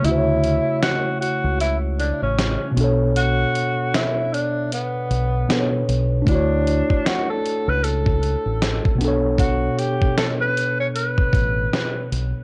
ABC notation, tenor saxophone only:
X:1
M:4/4
L:1/16
Q:"Swing 16ths" 1/4=77
K:Bm
V:1 name="Tenor saxophone"
E4 F2 F2 E2 D C3 z2 | F4 E2 D2 B,6 z2 | D4 F A2 B A6 z2 | F2 G2 A B2 c B6 z2 |]